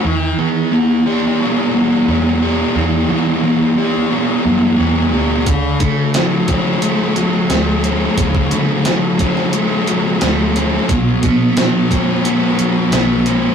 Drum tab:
HH |----------------|----------------|x-x-x-x-x-x-x-x-|x-x-x-x-x-x-x-x-|
SD |----------------|----------------|----o-------o---|----o--o----o---|
BD |----------------|----------------|o-o---o---------|oo----o---------|

HH |x-x-x-x-x-x-x-x-|
SD |----o-------o---|
BD |o-o---o---------|